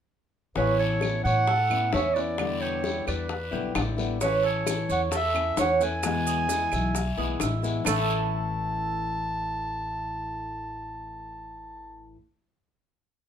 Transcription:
0.55 A1 E3 B3 C#4 E4 B4, high bongo, long guiro
0.79 A4 C#5
1.01 E3 B3 C#4 E4, high bongo, short guiro, claves
1.24 A2 C#5 F#5, short guiro
1.47 A4, muted nylon-string guitar stroke, high bongo, long guiro
1.70 B3 C#4 E4, claves
1.93 E2 E3 B3 C#4 E4 E5, high bongo, low bongo, short guiro
2.14 B3 C#4 E4 B4 D5, short guiro
2.38 B2 D3 G3 B3 E4, high bongo, long guiro, claves
2.61 G4 C#5
2.84 D3 G3 B3 E4, high bongo, short guiro
3.07 E2 B4 D5, high bongo, short guiro, claves
3.29 muted nylon-string guitar stroke, high bongo, long guiro
3.51 B1 D3 G3 B3 E4 G4, high bongo
3.74 A1 D3 G3 B3 E4 D5, high bongo, low bongo, short guiro, claves
3.97 D3 G3 B3 E4, high bongo, short guiro
4.21 E3 A3 C#4 E4 B4, high bongo, long guiro, maracas
4.43 A4 C#5
4.66 E3 A3 C#4 E4, high bongo, short guiro, claves, maracas
4.89 E2 C#5 F#5, short guiro, maracas
5.11 A4, muted nylon-string guitar stroke, high bongo, long guiro, maracas
5.15 E5
5.34 A3 C#4 E4, claves
5.57 E2 E3 A3 C#4 E4 F#5, high bongo, low bongo, short guiro, maracas
5.80 A3 C#4 E4 B4 G#5, short guiro, maracas
6.03 B2 E3 G#3 B3 E4, high bongo, long guiro, claves, maracas
6.27 G#4, maracas
6.49 E3 G#3 B3 E4, high bongo, short guiro, maracas
6.72 B1 E5, high bongo, short guiro, claves, maracas
6.95 muted nylon-string guitar stroke, high bongo, long guiro, maracas
7.17 B1 E3 G#3 B3 E4 G#4, high bongo
7.40 A1 E3 G#3 B3 E4 E5, high bongo, low bongo, short guiro, claves, maracas
7.62 E3 G#3 B3 E4, high bongo, short guiro, maracas
7.84 A1 A2 E3 A3 C#4 E4 A4 A5, low bongo, long guiro, claves, maracas

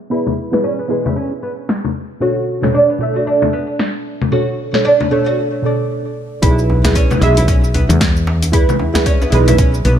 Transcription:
Already playing: B3 E4 G#4 B4 E5
0.10 B3 E4 G#4 B4
0.27 low conga
0.52 B3 E4 G#4 B4, snare
0.64 C#4
0.79 B3
0.88 G#3 B3 E4 G#4
0.92 B4
1.05 E4, low conga
1.16 C#4
1.43 B3
1.69 snare
1.85 low conga
2.20 B2 D4 F#4 A4 C#5
2.62 B2 D4 A4 C#5, snare, low conga
2.74 D4
2.90 B3
2.99 B2 A3 D4 A4
3.03 E5
3.16 F#4
3.27 D4
3.42 low conga
3.53 B3
3.79 snare
4.22 low conga
4.31 B2 D4 F#4 A4 C#5
4.73 B2 D4 A4 C#5, snare
4.85 D4
5.00 B3, low conga
5.10 B2 A3 D4 A4 C#5
5.26 F#4
5.62 B2 D4 A4 D5
6.42 B1 E4 G#4 B4, kick, open hi-hat, shaker
6.59 shaker
6.70 djembe tone
6.84 E4 G#4 B4, snare, open hi-hat, djembe slap, djembe bass, shaker
6.95 C#4, kick, open hi-hat, shaker
7.10 B3, djembe slap, djembe tone, low conga, shaker
7.19 B1 G#3 E4 G#4 E5, open hi-hat, djembe tone
7.37 E4, open hi-hat, djembe tone, shaker
7.48 C#4, kick, open hi-hat, shaker
7.64 shaker
7.74 B3, open hi-hat, djembe bass
7.89 E2, open hi-hat, djembe slap, low conga, shaker
8.01 kick, snare, open hi-hat, shaker
8.17 shaker
8.27 djembe slap
8.42 open hi-hat, djembe tone, shaker
8.52 E4 G#4 B4, kick, open hi-hat, shaker
8.69 low conga, shaker
8.79 djembe tone
8.94 E4 G#4 B4, snare, open hi-hat, djembe slap, djembe bass, shaker
9.06 C#4, kick, open hi-hat, shaker
9.21 B3, djembe slap, djembe tone, shaker
9.30 B1 G#3 E4 G#4 B4, open hi-hat
9.48 E4, open hi-hat, djembe tone, low conga, shaker
9.58 C#4, kick, open hi-hat, shaker
9.74 shaker
9.85 B1 B3, open hi-hat

